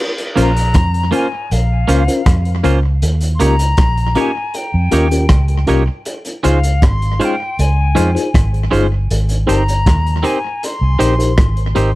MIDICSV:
0, 0, Header, 1, 7, 480
1, 0, Start_track
1, 0, Tempo, 759398
1, 1913, Time_signature, 4, 2, 24, 8
1, 7554, End_track
2, 0, Start_track
2, 0, Title_t, "Flute"
2, 0, Program_c, 0, 73
2, 260, Note_on_c, 0, 82, 117
2, 726, Note_on_c, 0, 80, 88
2, 736, Note_off_c, 0, 82, 0
2, 961, Note_on_c, 0, 77, 81
2, 971, Note_off_c, 0, 80, 0
2, 1677, Note_off_c, 0, 77, 0
2, 2117, Note_on_c, 0, 84, 73
2, 2165, Note_on_c, 0, 82, 109
2, 2175, Note_off_c, 0, 84, 0
2, 2655, Note_on_c, 0, 80, 91
2, 2664, Note_off_c, 0, 82, 0
2, 2883, Note_on_c, 0, 79, 84
2, 2892, Note_off_c, 0, 80, 0
2, 3598, Note_off_c, 0, 79, 0
2, 4082, Note_on_c, 0, 77, 88
2, 4332, Note_on_c, 0, 84, 104
2, 4342, Note_off_c, 0, 77, 0
2, 4577, Note_on_c, 0, 79, 89
2, 4586, Note_off_c, 0, 84, 0
2, 4809, Note_on_c, 0, 80, 82
2, 4818, Note_off_c, 0, 79, 0
2, 5281, Note_off_c, 0, 80, 0
2, 5996, Note_on_c, 0, 82, 101
2, 6482, Note_on_c, 0, 80, 81
2, 6492, Note_off_c, 0, 82, 0
2, 6729, Note_on_c, 0, 84, 100
2, 6738, Note_off_c, 0, 80, 0
2, 7441, Note_off_c, 0, 84, 0
2, 7554, End_track
3, 0, Start_track
3, 0, Title_t, "Tine electric piano"
3, 0, Program_c, 1, 4
3, 227, Note_on_c, 1, 70, 74
3, 228, Note_on_c, 1, 61, 85
3, 230, Note_on_c, 1, 65, 79
3, 232, Note_on_c, 1, 72, 89
3, 314, Note_off_c, 1, 70, 0
3, 315, Note_off_c, 1, 61, 0
3, 315, Note_off_c, 1, 65, 0
3, 316, Note_off_c, 1, 72, 0
3, 706, Note_on_c, 1, 61, 86
3, 707, Note_on_c, 1, 70, 69
3, 708, Note_on_c, 1, 65, 75
3, 710, Note_on_c, 1, 72, 90
3, 794, Note_off_c, 1, 61, 0
3, 794, Note_off_c, 1, 65, 0
3, 794, Note_off_c, 1, 70, 0
3, 796, Note_off_c, 1, 72, 0
3, 1190, Note_on_c, 1, 61, 84
3, 1191, Note_on_c, 1, 70, 84
3, 1194, Note_on_c, 1, 65, 75
3, 1194, Note_on_c, 1, 72, 90
3, 1275, Note_off_c, 1, 61, 0
3, 1276, Note_off_c, 1, 70, 0
3, 1277, Note_off_c, 1, 65, 0
3, 1278, Note_off_c, 1, 72, 0
3, 1312, Note_on_c, 1, 61, 70
3, 1314, Note_on_c, 1, 65, 66
3, 1315, Note_on_c, 1, 70, 63
3, 1316, Note_on_c, 1, 72, 79
3, 1394, Note_off_c, 1, 61, 0
3, 1395, Note_off_c, 1, 65, 0
3, 1396, Note_off_c, 1, 70, 0
3, 1396, Note_off_c, 1, 72, 0
3, 1554, Note_on_c, 1, 70, 39
3, 1554, Note_on_c, 1, 72, 44
3, 1602, Note_off_c, 1, 70, 0
3, 1602, Note_off_c, 1, 72, 0
3, 1665, Note_on_c, 1, 61, 89
3, 1665, Note_on_c, 1, 70, 87
3, 1668, Note_on_c, 1, 65, 76
3, 1668, Note_on_c, 1, 72, 93
3, 1753, Note_off_c, 1, 61, 0
3, 1753, Note_off_c, 1, 70, 0
3, 1754, Note_off_c, 1, 65, 0
3, 1755, Note_off_c, 1, 72, 0
3, 2150, Note_on_c, 1, 61, 79
3, 2152, Note_on_c, 1, 65, 74
3, 2153, Note_on_c, 1, 70, 92
3, 2154, Note_on_c, 1, 67, 72
3, 2235, Note_off_c, 1, 61, 0
3, 2236, Note_off_c, 1, 65, 0
3, 2237, Note_off_c, 1, 67, 0
3, 2237, Note_off_c, 1, 70, 0
3, 2628, Note_on_c, 1, 61, 84
3, 2631, Note_on_c, 1, 65, 74
3, 2633, Note_on_c, 1, 67, 74
3, 2633, Note_on_c, 1, 70, 96
3, 2715, Note_off_c, 1, 61, 0
3, 2716, Note_off_c, 1, 65, 0
3, 2717, Note_off_c, 1, 67, 0
3, 2717, Note_off_c, 1, 70, 0
3, 3105, Note_on_c, 1, 61, 90
3, 3106, Note_on_c, 1, 65, 82
3, 3108, Note_on_c, 1, 67, 83
3, 3108, Note_on_c, 1, 70, 96
3, 3193, Note_off_c, 1, 61, 0
3, 3194, Note_off_c, 1, 65, 0
3, 3194, Note_off_c, 1, 67, 0
3, 3194, Note_off_c, 1, 70, 0
3, 3231, Note_on_c, 1, 61, 72
3, 3233, Note_on_c, 1, 65, 61
3, 3234, Note_on_c, 1, 67, 63
3, 3236, Note_on_c, 1, 70, 71
3, 3314, Note_off_c, 1, 61, 0
3, 3315, Note_off_c, 1, 65, 0
3, 3315, Note_off_c, 1, 67, 0
3, 3317, Note_off_c, 1, 70, 0
3, 3472, Note_on_c, 1, 67, 41
3, 3473, Note_on_c, 1, 70, 46
3, 3521, Note_off_c, 1, 67, 0
3, 3521, Note_off_c, 1, 70, 0
3, 3582, Note_on_c, 1, 61, 92
3, 3585, Note_on_c, 1, 65, 83
3, 3587, Note_on_c, 1, 70, 95
3, 3588, Note_on_c, 1, 67, 91
3, 3671, Note_off_c, 1, 61, 0
3, 3673, Note_off_c, 1, 65, 0
3, 3674, Note_off_c, 1, 67, 0
3, 3674, Note_off_c, 1, 70, 0
3, 4068, Note_on_c, 1, 63, 83
3, 4069, Note_on_c, 1, 65, 76
3, 4072, Note_on_c, 1, 68, 76
3, 4072, Note_on_c, 1, 72, 99
3, 4155, Note_off_c, 1, 63, 0
3, 4155, Note_off_c, 1, 65, 0
3, 4156, Note_off_c, 1, 68, 0
3, 4156, Note_off_c, 1, 72, 0
3, 4546, Note_on_c, 1, 65, 80
3, 4547, Note_on_c, 1, 63, 86
3, 4547, Note_on_c, 1, 72, 91
3, 4548, Note_on_c, 1, 68, 70
3, 4634, Note_off_c, 1, 63, 0
3, 4634, Note_off_c, 1, 65, 0
3, 4634, Note_off_c, 1, 68, 0
3, 4634, Note_off_c, 1, 72, 0
3, 5024, Note_on_c, 1, 63, 93
3, 5025, Note_on_c, 1, 68, 84
3, 5026, Note_on_c, 1, 65, 79
3, 5029, Note_on_c, 1, 72, 107
3, 5112, Note_off_c, 1, 63, 0
3, 5113, Note_off_c, 1, 68, 0
3, 5114, Note_off_c, 1, 65, 0
3, 5115, Note_off_c, 1, 72, 0
3, 5148, Note_on_c, 1, 63, 64
3, 5148, Note_on_c, 1, 68, 59
3, 5149, Note_on_c, 1, 65, 64
3, 5150, Note_on_c, 1, 72, 80
3, 5232, Note_off_c, 1, 63, 0
3, 5233, Note_off_c, 1, 65, 0
3, 5233, Note_off_c, 1, 68, 0
3, 5234, Note_off_c, 1, 72, 0
3, 5391, Note_on_c, 1, 72, 43
3, 5393, Note_on_c, 1, 68, 40
3, 5441, Note_off_c, 1, 68, 0
3, 5441, Note_off_c, 1, 72, 0
3, 5507, Note_on_c, 1, 63, 92
3, 5510, Note_on_c, 1, 65, 86
3, 5511, Note_on_c, 1, 68, 85
3, 5511, Note_on_c, 1, 72, 97
3, 5594, Note_off_c, 1, 63, 0
3, 5596, Note_off_c, 1, 65, 0
3, 5596, Note_off_c, 1, 68, 0
3, 5596, Note_off_c, 1, 72, 0
3, 5982, Note_on_c, 1, 63, 86
3, 5987, Note_on_c, 1, 67, 71
3, 5987, Note_on_c, 1, 72, 92
3, 5988, Note_on_c, 1, 70, 76
3, 6072, Note_off_c, 1, 63, 0
3, 6074, Note_off_c, 1, 67, 0
3, 6074, Note_off_c, 1, 72, 0
3, 6075, Note_off_c, 1, 70, 0
3, 6468, Note_on_c, 1, 63, 80
3, 6468, Note_on_c, 1, 72, 90
3, 6469, Note_on_c, 1, 67, 74
3, 6471, Note_on_c, 1, 70, 78
3, 6554, Note_off_c, 1, 63, 0
3, 6555, Note_off_c, 1, 67, 0
3, 6555, Note_off_c, 1, 72, 0
3, 6556, Note_off_c, 1, 70, 0
3, 6946, Note_on_c, 1, 67, 77
3, 6947, Note_on_c, 1, 63, 91
3, 6948, Note_on_c, 1, 72, 95
3, 6949, Note_on_c, 1, 70, 76
3, 7034, Note_off_c, 1, 63, 0
3, 7034, Note_off_c, 1, 67, 0
3, 7035, Note_off_c, 1, 70, 0
3, 7035, Note_off_c, 1, 72, 0
3, 7069, Note_on_c, 1, 67, 62
3, 7070, Note_on_c, 1, 63, 66
3, 7072, Note_on_c, 1, 72, 78
3, 7075, Note_on_c, 1, 70, 61
3, 7153, Note_off_c, 1, 67, 0
3, 7154, Note_off_c, 1, 63, 0
3, 7155, Note_off_c, 1, 72, 0
3, 7156, Note_off_c, 1, 70, 0
3, 7316, Note_on_c, 1, 70, 36
3, 7316, Note_on_c, 1, 72, 38
3, 7363, Note_off_c, 1, 70, 0
3, 7363, Note_off_c, 1, 72, 0
3, 7425, Note_on_c, 1, 67, 78
3, 7426, Note_on_c, 1, 63, 87
3, 7427, Note_on_c, 1, 70, 77
3, 7431, Note_on_c, 1, 72, 99
3, 7514, Note_off_c, 1, 63, 0
3, 7514, Note_off_c, 1, 67, 0
3, 7514, Note_off_c, 1, 70, 0
3, 7516, Note_off_c, 1, 72, 0
3, 7554, End_track
4, 0, Start_track
4, 0, Title_t, "Clean electric guitar"
4, 0, Program_c, 2, 27
4, 225, Note_on_c, 2, 58, 70
4, 229, Note_on_c, 2, 61, 65
4, 233, Note_on_c, 2, 65, 76
4, 234, Note_on_c, 2, 72, 66
4, 318, Note_off_c, 2, 58, 0
4, 320, Note_off_c, 2, 61, 0
4, 322, Note_off_c, 2, 65, 0
4, 322, Note_off_c, 2, 72, 0
4, 703, Note_on_c, 2, 58, 81
4, 706, Note_on_c, 2, 61, 82
4, 711, Note_on_c, 2, 65, 96
4, 711, Note_on_c, 2, 72, 86
4, 796, Note_off_c, 2, 58, 0
4, 798, Note_off_c, 2, 61, 0
4, 800, Note_off_c, 2, 65, 0
4, 801, Note_off_c, 2, 72, 0
4, 1186, Note_on_c, 2, 58, 75
4, 1189, Note_on_c, 2, 61, 81
4, 1193, Note_on_c, 2, 65, 85
4, 1197, Note_on_c, 2, 72, 89
4, 1278, Note_off_c, 2, 58, 0
4, 1279, Note_off_c, 2, 61, 0
4, 1282, Note_off_c, 2, 65, 0
4, 1284, Note_off_c, 2, 72, 0
4, 1668, Note_on_c, 2, 58, 88
4, 1671, Note_on_c, 2, 61, 80
4, 1673, Note_on_c, 2, 65, 84
4, 1677, Note_on_c, 2, 72, 83
4, 1759, Note_off_c, 2, 58, 0
4, 1761, Note_off_c, 2, 61, 0
4, 1762, Note_off_c, 2, 65, 0
4, 1764, Note_off_c, 2, 72, 0
4, 2147, Note_on_c, 2, 58, 76
4, 2153, Note_on_c, 2, 63, 77
4, 2154, Note_on_c, 2, 67, 74
4, 2158, Note_on_c, 2, 73, 86
4, 2239, Note_off_c, 2, 58, 0
4, 2241, Note_off_c, 2, 63, 0
4, 2242, Note_off_c, 2, 67, 0
4, 2244, Note_off_c, 2, 73, 0
4, 2626, Note_on_c, 2, 58, 82
4, 2631, Note_on_c, 2, 63, 80
4, 2636, Note_on_c, 2, 73, 87
4, 2637, Note_on_c, 2, 67, 88
4, 2718, Note_off_c, 2, 58, 0
4, 2721, Note_off_c, 2, 63, 0
4, 2723, Note_off_c, 2, 67, 0
4, 2723, Note_off_c, 2, 73, 0
4, 3110, Note_on_c, 2, 58, 74
4, 3115, Note_on_c, 2, 63, 80
4, 3119, Note_on_c, 2, 67, 84
4, 3122, Note_on_c, 2, 73, 81
4, 3200, Note_off_c, 2, 58, 0
4, 3203, Note_off_c, 2, 63, 0
4, 3204, Note_off_c, 2, 67, 0
4, 3206, Note_off_c, 2, 73, 0
4, 3588, Note_on_c, 2, 58, 80
4, 3593, Note_on_c, 2, 63, 84
4, 3597, Note_on_c, 2, 67, 82
4, 3597, Note_on_c, 2, 73, 94
4, 3679, Note_off_c, 2, 58, 0
4, 3682, Note_off_c, 2, 63, 0
4, 3683, Note_off_c, 2, 67, 0
4, 3684, Note_off_c, 2, 73, 0
4, 4067, Note_on_c, 2, 56, 80
4, 4069, Note_on_c, 2, 61, 86
4, 4073, Note_on_c, 2, 65, 86
4, 4078, Note_on_c, 2, 72, 93
4, 4159, Note_off_c, 2, 56, 0
4, 4159, Note_off_c, 2, 61, 0
4, 4161, Note_off_c, 2, 65, 0
4, 4164, Note_off_c, 2, 72, 0
4, 4551, Note_on_c, 2, 56, 84
4, 4557, Note_on_c, 2, 61, 81
4, 4558, Note_on_c, 2, 65, 83
4, 4559, Note_on_c, 2, 72, 92
4, 4641, Note_off_c, 2, 56, 0
4, 4643, Note_off_c, 2, 61, 0
4, 4644, Note_off_c, 2, 65, 0
4, 4645, Note_off_c, 2, 72, 0
4, 5026, Note_on_c, 2, 56, 84
4, 5027, Note_on_c, 2, 61, 82
4, 5033, Note_on_c, 2, 65, 87
4, 5036, Note_on_c, 2, 72, 94
4, 5118, Note_off_c, 2, 56, 0
4, 5119, Note_off_c, 2, 61, 0
4, 5122, Note_off_c, 2, 65, 0
4, 5123, Note_off_c, 2, 72, 0
4, 5505, Note_on_c, 2, 56, 88
4, 5507, Note_on_c, 2, 61, 87
4, 5509, Note_on_c, 2, 65, 78
4, 5514, Note_on_c, 2, 72, 95
4, 5598, Note_off_c, 2, 56, 0
4, 5599, Note_off_c, 2, 61, 0
4, 5600, Note_off_c, 2, 65, 0
4, 5602, Note_off_c, 2, 72, 0
4, 5988, Note_on_c, 2, 60, 72
4, 5993, Note_on_c, 2, 63, 76
4, 5995, Note_on_c, 2, 67, 77
4, 5997, Note_on_c, 2, 72, 91
4, 6079, Note_off_c, 2, 60, 0
4, 6082, Note_off_c, 2, 63, 0
4, 6083, Note_off_c, 2, 67, 0
4, 6084, Note_off_c, 2, 72, 0
4, 6466, Note_on_c, 2, 60, 83
4, 6470, Note_on_c, 2, 63, 75
4, 6472, Note_on_c, 2, 67, 90
4, 6476, Note_on_c, 2, 72, 80
4, 6558, Note_off_c, 2, 60, 0
4, 6560, Note_off_c, 2, 63, 0
4, 6561, Note_off_c, 2, 67, 0
4, 6563, Note_off_c, 2, 72, 0
4, 6947, Note_on_c, 2, 60, 77
4, 6949, Note_on_c, 2, 63, 80
4, 6951, Note_on_c, 2, 67, 90
4, 6954, Note_on_c, 2, 72, 91
4, 7039, Note_off_c, 2, 60, 0
4, 7040, Note_off_c, 2, 63, 0
4, 7041, Note_off_c, 2, 67, 0
4, 7042, Note_off_c, 2, 72, 0
4, 7431, Note_on_c, 2, 60, 76
4, 7431, Note_on_c, 2, 63, 90
4, 7437, Note_on_c, 2, 67, 92
4, 7440, Note_on_c, 2, 72, 86
4, 7521, Note_off_c, 2, 60, 0
4, 7521, Note_off_c, 2, 63, 0
4, 7524, Note_off_c, 2, 67, 0
4, 7525, Note_off_c, 2, 72, 0
4, 7554, End_track
5, 0, Start_track
5, 0, Title_t, "Fingered electric bass"
5, 0, Program_c, 3, 33
5, 239, Note_on_c, 3, 34, 80
5, 464, Note_off_c, 3, 34, 0
5, 476, Note_on_c, 3, 41, 82
5, 703, Note_off_c, 3, 41, 0
5, 958, Note_on_c, 3, 34, 94
5, 1184, Note_off_c, 3, 34, 0
5, 1193, Note_on_c, 3, 37, 75
5, 1309, Note_off_c, 3, 37, 0
5, 1434, Note_on_c, 3, 41, 84
5, 1662, Note_off_c, 3, 41, 0
5, 1672, Note_on_c, 3, 37, 88
5, 1901, Note_off_c, 3, 37, 0
5, 1910, Note_on_c, 3, 39, 99
5, 2140, Note_off_c, 3, 39, 0
5, 2153, Note_on_c, 3, 37, 68
5, 2381, Note_off_c, 3, 37, 0
5, 2393, Note_on_c, 3, 34, 77
5, 2621, Note_off_c, 3, 34, 0
5, 2996, Note_on_c, 3, 41, 77
5, 3107, Note_off_c, 3, 41, 0
5, 3113, Note_on_c, 3, 39, 74
5, 3341, Note_off_c, 3, 39, 0
5, 3352, Note_on_c, 3, 37, 91
5, 3581, Note_off_c, 3, 37, 0
5, 3595, Note_on_c, 3, 36, 76
5, 3711, Note_off_c, 3, 36, 0
5, 4076, Note_on_c, 3, 37, 95
5, 4315, Note_on_c, 3, 32, 85
5, 4325, Note_off_c, 3, 37, 0
5, 4542, Note_off_c, 3, 32, 0
5, 4798, Note_on_c, 3, 37, 102
5, 5024, Note_off_c, 3, 37, 0
5, 5040, Note_on_c, 3, 41, 78
5, 5153, Note_off_c, 3, 41, 0
5, 5279, Note_on_c, 3, 32, 91
5, 5504, Note_off_c, 3, 32, 0
5, 5516, Note_on_c, 3, 31, 85
5, 5743, Note_off_c, 3, 31, 0
5, 5757, Note_on_c, 3, 32, 93
5, 5983, Note_off_c, 3, 32, 0
5, 5996, Note_on_c, 3, 31, 78
5, 6223, Note_off_c, 3, 31, 0
5, 6239, Note_on_c, 3, 39, 80
5, 6465, Note_off_c, 3, 39, 0
5, 6834, Note_on_c, 3, 36, 89
5, 6947, Note_off_c, 3, 36, 0
5, 6954, Note_on_c, 3, 34, 86
5, 7182, Note_off_c, 3, 34, 0
5, 7196, Note_on_c, 3, 32, 90
5, 7423, Note_off_c, 3, 32, 0
5, 7437, Note_on_c, 3, 32, 79
5, 7552, Note_off_c, 3, 32, 0
5, 7554, End_track
6, 0, Start_track
6, 0, Title_t, "Muted clean electric guitar strokes"
6, 3713, Note_on_c, 9, 29, 49
6, 3776, Note_off_c, 9, 29, 0
6, 5152, Note_on_c, 9, 29, 34
6, 5215, Note_off_c, 9, 29, 0
6, 7554, End_track
7, 0, Start_track
7, 0, Title_t, "Drums"
7, 115, Note_on_c, 9, 42, 47
7, 178, Note_off_c, 9, 42, 0
7, 235, Note_on_c, 9, 42, 65
7, 298, Note_off_c, 9, 42, 0
7, 357, Note_on_c, 9, 42, 51
7, 420, Note_off_c, 9, 42, 0
7, 467, Note_on_c, 9, 42, 77
7, 472, Note_on_c, 9, 36, 104
7, 474, Note_on_c, 9, 37, 96
7, 531, Note_off_c, 9, 42, 0
7, 535, Note_off_c, 9, 36, 0
7, 537, Note_off_c, 9, 37, 0
7, 596, Note_on_c, 9, 42, 52
7, 659, Note_off_c, 9, 42, 0
7, 710, Note_on_c, 9, 42, 63
7, 773, Note_off_c, 9, 42, 0
7, 956, Note_on_c, 9, 42, 69
7, 1019, Note_off_c, 9, 42, 0
7, 1191, Note_on_c, 9, 42, 63
7, 1254, Note_off_c, 9, 42, 0
7, 1315, Note_on_c, 9, 42, 58
7, 1379, Note_off_c, 9, 42, 0
7, 1429, Note_on_c, 9, 36, 111
7, 1430, Note_on_c, 9, 37, 109
7, 1432, Note_on_c, 9, 42, 90
7, 1492, Note_off_c, 9, 36, 0
7, 1493, Note_off_c, 9, 37, 0
7, 1495, Note_off_c, 9, 42, 0
7, 1550, Note_on_c, 9, 42, 45
7, 1613, Note_off_c, 9, 42, 0
7, 1670, Note_on_c, 9, 42, 69
7, 1733, Note_off_c, 9, 42, 0
7, 1910, Note_on_c, 9, 42, 82
7, 1973, Note_off_c, 9, 42, 0
7, 2026, Note_on_c, 9, 42, 53
7, 2089, Note_off_c, 9, 42, 0
7, 2148, Note_on_c, 9, 42, 65
7, 2211, Note_off_c, 9, 42, 0
7, 2269, Note_on_c, 9, 42, 55
7, 2333, Note_off_c, 9, 42, 0
7, 2383, Note_on_c, 9, 42, 73
7, 2388, Note_on_c, 9, 36, 112
7, 2390, Note_on_c, 9, 37, 101
7, 2447, Note_off_c, 9, 42, 0
7, 2451, Note_off_c, 9, 36, 0
7, 2453, Note_off_c, 9, 37, 0
7, 2512, Note_on_c, 9, 42, 49
7, 2575, Note_off_c, 9, 42, 0
7, 2626, Note_on_c, 9, 42, 62
7, 2689, Note_off_c, 9, 42, 0
7, 2869, Note_on_c, 9, 42, 65
7, 2932, Note_off_c, 9, 42, 0
7, 3106, Note_on_c, 9, 42, 62
7, 3170, Note_off_c, 9, 42, 0
7, 3232, Note_on_c, 9, 42, 52
7, 3295, Note_off_c, 9, 42, 0
7, 3344, Note_on_c, 9, 37, 101
7, 3346, Note_on_c, 9, 42, 79
7, 3348, Note_on_c, 9, 36, 101
7, 3407, Note_off_c, 9, 37, 0
7, 3409, Note_off_c, 9, 42, 0
7, 3411, Note_off_c, 9, 36, 0
7, 3465, Note_on_c, 9, 42, 47
7, 3528, Note_off_c, 9, 42, 0
7, 3585, Note_on_c, 9, 42, 76
7, 3648, Note_off_c, 9, 42, 0
7, 3826, Note_on_c, 9, 42, 78
7, 3890, Note_off_c, 9, 42, 0
7, 3949, Note_on_c, 9, 42, 54
7, 4012, Note_off_c, 9, 42, 0
7, 4071, Note_on_c, 9, 42, 66
7, 4134, Note_off_c, 9, 42, 0
7, 4193, Note_on_c, 9, 42, 54
7, 4256, Note_off_c, 9, 42, 0
7, 4311, Note_on_c, 9, 42, 80
7, 4312, Note_on_c, 9, 36, 109
7, 4318, Note_on_c, 9, 37, 97
7, 4374, Note_off_c, 9, 42, 0
7, 4376, Note_off_c, 9, 36, 0
7, 4381, Note_off_c, 9, 37, 0
7, 4438, Note_on_c, 9, 42, 49
7, 4501, Note_off_c, 9, 42, 0
7, 4555, Note_on_c, 9, 42, 66
7, 4618, Note_off_c, 9, 42, 0
7, 4796, Note_on_c, 9, 42, 73
7, 4860, Note_off_c, 9, 42, 0
7, 5033, Note_on_c, 9, 42, 67
7, 5096, Note_off_c, 9, 42, 0
7, 5160, Note_on_c, 9, 42, 54
7, 5223, Note_off_c, 9, 42, 0
7, 5274, Note_on_c, 9, 36, 112
7, 5277, Note_on_c, 9, 37, 103
7, 5279, Note_on_c, 9, 42, 81
7, 5337, Note_off_c, 9, 36, 0
7, 5340, Note_off_c, 9, 37, 0
7, 5342, Note_off_c, 9, 42, 0
7, 5399, Note_on_c, 9, 42, 47
7, 5462, Note_off_c, 9, 42, 0
7, 5518, Note_on_c, 9, 42, 70
7, 5581, Note_off_c, 9, 42, 0
7, 5755, Note_on_c, 9, 42, 75
7, 5818, Note_off_c, 9, 42, 0
7, 5870, Note_on_c, 9, 42, 55
7, 5934, Note_off_c, 9, 42, 0
7, 5997, Note_on_c, 9, 42, 61
7, 6060, Note_off_c, 9, 42, 0
7, 6119, Note_on_c, 9, 42, 52
7, 6183, Note_off_c, 9, 42, 0
7, 6234, Note_on_c, 9, 36, 110
7, 6235, Note_on_c, 9, 42, 79
7, 6241, Note_on_c, 9, 37, 103
7, 6298, Note_off_c, 9, 36, 0
7, 6298, Note_off_c, 9, 42, 0
7, 6304, Note_off_c, 9, 37, 0
7, 6362, Note_on_c, 9, 42, 48
7, 6426, Note_off_c, 9, 42, 0
7, 6474, Note_on_c, 9, 42, 64
7, 6537, Note_off_c, 9, 42, 0
7, 6719, Note_on_c, 9, 42, 72
7, 6782, Note_off_c, 9, 42, 0
7, 6953, Note_on_c, 9, 42, 68
7, 7016, Note_off_c, 9, 42, 0
7, 7078, Note_on_c, 9, 42, 57
7, 7141, Note_off_c, 9, 42, 0
7, 7191, Note_on_c, 9, 37, 107
7, 7193, Note_on_c, 9, 36, 111
7, 7193, Note_on_c, 9, 42, 81
7, 7254, Note_off_c, 9, 37, 0
7, 7256, Note_off_c, 9, 36, 0
7, 7256, Note_off_c, 9, 42, 0
7, 7312, Note_on_c, 9, 42, 49
7, 7375, Note_off_c, 9, 42, 0
7, 7431, Note_on_c, 9, 42, 75
7, 7495, Note_off_c, 9, 42, 0
7, 7554, End_track
0, 0, End_of_file